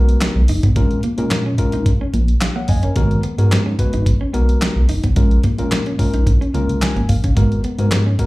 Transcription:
Already playing: analog synth bass B1, tine electric piano G#3 B3 F#4 A#4
0.09 closed hi-hat
0.21 muted clean electric guitar stroke, snare, clap, closed hi-hat
0.36 analog synth bass B1
0.48 analog synth bass F#1, clean electric guitar D#4, open hi-hat
0.63 analog synth bass G#1, clean electric guitar B3, kick, closed hi-hat
0.76 analog synth bass A#1, tine electric piano G#3 C#4 F4 A#4, clean electric guitar G#3, kick, closed hi-hat
0.91 closed hi-hat
1.03 clean electric guitar A#3, closed hi-hat
1.18 analog synth bass A#2, tine electric piano G#3 C#4 F4 A#4, muted clean electric guitar stroke, closed hi-hat
1.31 analog synth bass A#2, snare, clap, closed hi-hat
1.46 clean electric guitar C#4
1.58 tine electric piano G#3 C#4 F4 A#4, muted clean electric guitar stroke, kick, closed hi-hat
1.72 analog synth bass A#1, clean electric guitar D#4, closed hi-hat
1.86 muted clean electric guitar stroke, kick, closed hi-hat
2.01 clean electric guitar C#4
2.14 analog synth bass A#1, clean electric guitar A#3, closed hi-hat
2.28 closed hi-hat
2.41 tine electric piano F5, snare, clap, closed hi-hat
2.56 clean electric guitar A#3, tine electric piano C#5 F5 F#5
2.68 analog synth bass F#1, tine electric piano D#5 G#5, muted clean electric guitar stroke, kick, open hi-hat
2.83 clean electric guitar C#4, tine electric piano A#4 C#5, closed hi-hat
2.96 analog synth bass G#1, clean electric guitar G#3, tine electric piano G#3 B3 F#4 A#4, kick, closed hi-hat
3.11 closed hi-hat
3.23 clean electric guitar B3, closed hi-hat
3.38 analog synth bass G#2, tine electric piano G#3 B3 F#4 A#4, muted clean electric guitar stroke, closed hi-hat
3.52 analog synth bass G#2, snare, clap, closed hi-hat
3.66 clean electric guitar C#4
3.79 tine electric piano G#3 B3 F#4 B4, muted clean electric guitar stroke, kick, closed hi-hat
3.93 analog synth bass G#1, clean electric guitar D#4, closed hi-hat
4.06 muted clean electric guitar stroke, kick, closed hi-hat
4.21 clean electric guitar C#4
4.33 analog synth bass B1, tine electric piano G#3 B3 F#4 A#4, clean electric guitar B3, closed hi-hat
4.49 closed hi-hat
4.61 muted clean electric guitar stroke, snare, clap, closed hi-hat
4.76 analog synth bass B1
4.89 analog synth bass F#1, clean electric guitar D#4, open hi-hat
5.04 analog synth bass G#1, clean electric guitar B3, kick, closed hi-hat
5.16 analog synth bass A#1, tine electric piano G#3 C#4 F4 A#4, clean electric guitar G#3, kick, closed hi-hat
5.31 closed hi-hat
5.43 clean electric guitar A#3, kick, closed hi-hat
5.58 analog synth bass A#2, tine electric piano G#3 C#4 F4 A#4, muted clean electric guitar stroke, closed hi-hat
5.71 analog synth bass A#2, snare, clap, closed hi-hat
5.86 clean electric guitar C#4, closed hi-hat
5.99 tine electric piano G#3 C#4 F4 A#4, muted clean electric guitar stroke, kick, open hi-hat
6.14 analog synth bass A#1, clean electric guitar D#4, closed hi-hat
6.27 analog synth bass A#1, muted clean electric guitar stroke, kick, closed hi-hat
6.41 clean electric guitar C#4, closed hi-hat
6.54 analog synth bass C#2, tine electric piano G#3 C#4 F4 A#4, clean electric guitar A#3, closed hi-hat
6.69 analog synth bass C#2, closed hi-hat
6.82 tine electric piano G#5, snare, clap, closed hi-hat
6.96 analog synth bass G#1, clean electric guitar A#3, closed hi-hat
7.09 analog synth bass A#1, tine electric piano F5, muted clean electric guitar stroke, kick, open hi-hat
7.24 analog synth bass F#1, clean electric guitar C#4, kick, closed hi-hat
7.36 analog synth bass G#1, tine electric piano G#3 B3 F#4 A#4, clean electric guitar G#3, kick, closed hi-hat
7.52 closed hi-hat
7.64 clean electric guitar B3, closed hi-hat
7.79 analog synth bass G#2, tine electric piano G#3 B3 F#4 A#4, muted clean electric guitar stroke, closed hi-hat
7.91 analog synth bass G#2, snare, clap, closed hi-hat
8.06 clean electric guitar C#4
8.19 tine electric piano G#3 B3 F#4 A#4, muted clean electric guitar stroke, kick, closed hi-hat

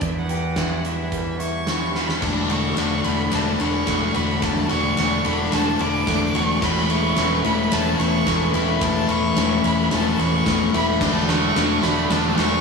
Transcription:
0.01 fingered electric bass E2, clean electric guitar E2, analog synth pad G3 E4 B4, violin E5, kick, closed hi-hat
0.18 violin F#5
0.29 clean electric guitar G4, closed hi-hat
0.56 clean electric guitar E4, kick, snare, closed hi-hat
0.85 clean electric guitar E3, violin E5, closed hi-hat
1.12 clean electric guitar G3, kick, closed hi-hat
1.39 clean electric guitar E4, violin C#6, closed hi-hat
1.67 clean electric guitar E3, snare, closed hi-hat
1.95 clean electric guitar G3, violin B5, snare
2.09 snare
2.22 fingered electric bass E1, distorted electric guitar D3 A3 D4, clean electric guitar E3, analog synth pad D4 A4 F#5, violin A5, kick, snare, crash
2.50 distorted electric guitar D3 A3 D4, clean electric guitar F#4, violin C#6, ride
2.77 fingered electric bass E1, distorted electric guitar D3 A3 D4, clean electric guitar D4, snare, ride
3.04 fingered electric bass E1, distorted electric guitar D3 A3 D4, clean electric guitar E3, violin B5, ride
3.32 fingered electric bass E1, distorted electric guitar D3 A3 D4, clean electric guitar D4, violin A5, snare, ride
3.60 fingered electric bass E1, distorted electric guitar D3 A3 D4, clean electric guitar E3, violin C#6, ride
3.87 fingered electric bass E1, distorted electric guitar D3 A3 D4, clean electric guitar A3, kick, snare, ride
4.14 fingered electric bass E1, distorted electric guitar D3 A3 D4, clean electric guitar F#4, violin B5, ride
4.42 fingered electric bass E1, distorted electric guitar D3 A3 D4, clean electric guitar E3, violin A5, kick, snare, ride
4.69 fingered electric bass E1, distorted electric guitar D3 A3 D4, clean electric guitar F#4, violin C#6, ride
4.97 fingered electric bass E1, distorted electric guitar D3 A3 D4, clean electric guitar D4, snare, ride
5.25 fingered electric bass E1, distorted electric guitar D3 A3 D4, clean electric guitar E3, violin B5, ride
5.52 fingered electric bass E1, distorted electric guitar D3 A3 D4, clean electric guitar D4, violin A5, snare, ride
5.79 fingered electric bass E1, distorted electric guitar D3 A3 D4, clean electric guitar E3, violin D6, ride
6.07 fingered electric bass E1, distorted electric guitar D3 A3 D4, clean electric guitar A3, kick, snare, ride
6.35 fingered electric bass E1, distorted electric guitar D3 A3 D4, clean electric guitar F#4, violin C#6, ride
6.62 fingered electric bass E1, clean electric guitar E2, distorted electric guitar A2 E3 A3, analog synth pad C#4 B4 A5, violin B5, kick, snare, crash
6.89 distorted electric guitar A2 E3 A3, clean electric guitar E4, violin C#6, ride
7.16 fingered electric bass E1, distorted electric guitar A2 E3 A3, clean electric guitar C#4, snare, ride
7.44 fingered electric bass E1, distorted electric guitar A2 E3 A3, clean electric guitar E3, violin B5, ride
7.72 fingered electric bass E1, distorted electric guitar A2 E3 A3, clean electric guitar C#4, violin A5, snare, ride
7.99 fingered electric bass E1, distorted electric guitar A2 E3 A3, clean electric guitar E3, violin C#6, ride
8.26 fingered electric bass E1, distorted electric guitar A2 E3 A3, clean electric guitar A3, kick, snare, ride
8.53 fingered electric bass E1, distorted electric guitar A2 E3 A3, clean electric guitar E4, violin B5, ride
8.81 fingered electric bass E1, clean electric guitar E2, distorted electric guitar A2 E3 A3, violin A5, analog synth pad B5, kick, snare, ride
9.09 fingered electric bass E1, distorted electric guitar A2 E3 A3, clean electric guitar E4, violin C#6, ride
9.36 fingered electric bass E1, distorted electric guitar A2 E3 A3, clean electric guitar C#4, snare, ride
9.63 fingered electric bass E1, distorted electric guitar A2 E3 A3, clean electric guitar E3, violin B5, ride
9.91 fingered electric bass E1, distorted electric guitar A2 E3 A3, clean electric guitar C#4, violin A5, snare, ride
10.19 fingered electric bass E1, distorted electric guitar A2 E3 A3, clean electric guitar E3, violin C#6, ride
10.45 fingered electric bass E1, distorted electric guitar A2 E3 A3, clean electric guitar A3, kick, snare, ride
10.73 fingered electric bass E1, distorted electric guitar A2 E3 A3, clean electric guitar E4, violin B5, ride
11.00 fingered electric bass E1, distorted electric guitar D3 A3 D4, clean electric guitar E3, analog synth pad F#4 D5 A5, violin A5, kick, snare, crash
11.28 distorted electric guitar D3 A3 D4, clean electric guitar F#4, violin C#6, snare, ride
11.56 fingered electric bass E1, distorted electric guitar D3 A3 D4, clean electric guitar D4, snare, ride
11.83 fingered electric bass E1, distorted electric guitar D3 A3 D4, clean electric guitar E3, violin B5, snare, ride
12.10 fingered electric bass E1, distorted electric guitar D3 A3 D4, clean electric guitar D4, violin A5, snare, ride
12.37 fingered electric bass E1, distorted electric guitar D3 A3 D4, clean electric guitar E3, violin C#6, snare, ride

